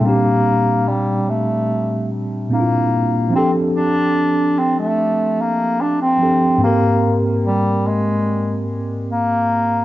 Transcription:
<<
  \new Staff \with { instrumentName = "Tine electric piano" } { \time 4/4 \key bes \lydian \tempo 4 = 73 <bes, g c' d' g'>2. <bes, bes c' d' e' f'>4 | <f c' d' g' a'>2.~ <f c' d' g' a'>8 <f c' d' g' a'>8 | <aes, bes c' g' bes'>1 | }
  \new Staff \with { instrumentName = "Bass clarinet" } { \time 4/4 \key bes \lydian bes4 g8 a4 r8 bes4 | c'8 d'4 c'16 a8. bes8 d'16 c'8. | bes8. r16 g8 aes4 r8 bes4 | }
>>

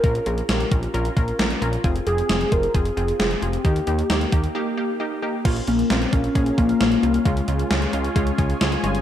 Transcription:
<<
  \new Staff \with { instrumentName = "Analog synth pad" } { \time 4/4 \key bes \dorian \tempo 4 = 133 r1 | r1 | r1 | <des' f' bes' f''>1 |
<aes' des'' aes''>1 | }
  \new Staff \with { instrumentName = "Soft synth lead" } { \time 4/4 \key bes \dorian bes'8 aes'8 g'4 r2 | f'8 aes'4 bes'8 aes'4 aes'8 g'8~ | g'2. r4 | r8 bes8 c'8 des'4 bes4. |
aes4 r2. | }
  \new Staff \with { instrumentName = "Synth pluck" } { \time 4/4 \key bes \dorian <des' f' bes'>8 <des' f' bes'>8 <des' f' bes'>8 <des' f' bes'>8 <des' f' bes'>8 <des' f' bes'>8 <des' f' bes'>8 <des' f' bes'>8 | <c' f' aes'>8 <c' f' g'>8 <c' f' aes'>8 <c' f' aes'>8 <c' f' aes'>8 <c' f' aes'>8 <c' f' aes'>8 <c' f' aes'>8 | <bes ees' g'>8 <bes ees' g'>8 <bes ees' g'>8 <bes ees' g'>8 <bes ees' g'>8 <bes ees' g'>8 <bes ees' g'>8 <bes ees' g'>8 | <bes des' f'>8 <bes des' f'>8 <bes des' f'>8 <bes des' f'>8 <bes des' aes'>8 <bes des' f'>8 <bes des' f'>8 <bes des' f'>8 |
<aes des' f'>8 <aes des' f'>8 <aes des' f'>8 <aes des' f'>8 <aes des' f'>8 <aes des' f'>8 <aes des' f'>8 <aes des' f'>8 | }
  \new Staff \with { instrumentName = "Analog synth bass" } { \clef bass \time 4/4 \key bes \dorian bes,,8 bes,,8 bes,,8 bes,,8 bes,,8 bes,,8 bes,,8 bes,,8 | f,,8 f,,8 f,,8 f,,8 f,,8 f,,8 f,,8 f,,8 | ees,8 ees,8 ees,8 ees,8 r2 | bes,,8 bes,,8 bes,,8 bes,,8 bes,,8 bes,,8 bes,,8 c,8 |
des,8 des,8 des,8 des,8 des,8 des,8 des,8 g,,8 | }
  \new DrumStaff \with { instrumentName = "Drums" } \drummode { \time 4/4 <hh bd>16 hh16 hh16 hh16 <hh sn>16 hh16 <hh bd>16 hh16 hh16 hh16 <hh bd>16 hh16 <hh sn>16 hh16 hh16 hh16 | <hh bd>16 hh16 hh16 hh16 <hh sn>16 hh16 <hh bd>16 hh16 <hh bd>16 hh16 hh16 hh16 <hh sn>16 hh16 hh16 hh16 | <hh bd>16 hh16 hh16 hh16 <hh sn>16 hh16 <hh bd>16 hh16 r4 r4 | <cymc hh bd>16 hh16 hh16 hh16 <hh sn>16 hh16 <hh bd>16 hh16 <hh bd>16 hh16 <hh bd>16 hh16 <hh sn>16 hh16 hh16 hh16 |
<hh bd>16 hh16 hh16 hh16 <hh sn>16 hh16 hh16 hh16 <hh bd>16 hh16 <hh bd>16 hh16 <hh sn>16 hh16 hh16 hh16 | }
>>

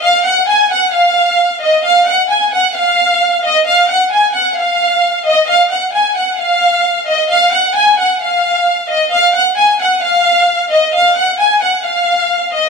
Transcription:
\new Staff \with { instrumentName = "Violin section" } { \time 4/4 \key f \phrygian \tempo 4 = 132 f''8 ges''8 aes''8 ges''8 f''4. ees''8 | f''8 ges''8 aes''8 ges''8 f''4. ees''8 | f''8 ges''8 aes''8 ges''8 f''4. ees''8 | f''8 ges''8 aes''8 ges''8 f''4. ees''8 |
f''8 ges''8 aes''8 ges''8 f''4. ees''8 | f''8 ges''8 aes''8 ges''8 f''4. ees''8 | f''8 ges''8 aes''8 ges''8 f''4. ees''8 | }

